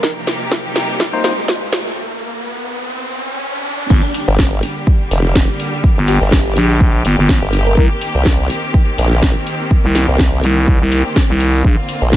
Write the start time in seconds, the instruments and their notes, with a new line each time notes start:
Already playing: riser
0.03 string section C3 A#3 D#4 G4, fm electric piano A#4, kick, snare, shaker
0.27 snare, open hi-hat, shaker
0.40 shaker
0.51 kick, snare, shaker
0.75 snare, open hi-hat, shaker
0.89 shaker
1.00 kick, snare, shaker
1.13 synth stab A#3 D#4 C5
1.24 synth stab A#3 D#4 C5, snare, open hi-hat, shaker
1.38 shaker
1.48 kick, snare, shaker
1.72 snare, open hi-hat, shaker
1.87 shaker
3.90 fm bass G1, string section D3 G3 A#3 G4, kick, crash, shaker
4.14 open hi-hat, shaker
4.27 wobble bass G1, shaker
4.38 kick, snare, shaker
4.62 open hi-hat, shaker
4.76 shaker
4.87 kick, shaker
5.11 wobble bass F1, open hi-hat, shaker
5.24 shaker
5.35 kick, snare, shaker
5.60 open hi-hat, shaker
5.73 shaker
5.84 kick, shaker
5.97 fm bass G1
6.08 fm electric piano G4, open hi-hat, shaker
6.21 wobble bass G1, shaker
6.32 kick, snare, shaker
6.56 fm bass A#1, open hi-hat, shaker
6.70 shaker
6.80 kick, shaker
7.05 fm bass G1, open hi-hat, shaker
7.18 fm bass G1, shaker
7.29 kick, snare, shaker
7.42 wobble bass G1
7.53 open hi-hat, shaker
7.66 fm electric piano A#4, shaker
7.77 fm bass C2, string section D#3 C4, fm electric piano A#4, kick, shaker
8.01 open hi-hat, shaker
8.15 wobble bass C2, shaker
8.26 kick, snare, shaker
8.50 open hi-hat, shaker
8.63 shaker
8.74 kick, shaker
8.98 wobble bass A#1, open hi-hat, shaker
9.12 shaker
9.22 kick, snare, shaker
9.46 open hi-hat, shaker
9.60 shaker
9.71 kick, shaker
9.84 fm bass C2
9.95 snare, open hi-hat, shaker
10.08 wobble bass C2, shaker
10.19 kick, snare, shaker
10.43 fm bass C2, open hi-hat, shaker
10.57 shaker
10.68 kick, shaker
10.81 fm bass C2
10.91 open hi-hat, shaker
11.06 shaker
11.16 kick, snare, shaker
11.29 fm bass C2
11.40 open hi-hat, shaker
11.54 shaker
11.64 fm bass A#1, string section D3 F4, kick, shaker
11.89 open hi-hat, shaker
12.02 wobble bass A#1, shaker
12.13 kick, snare, shaker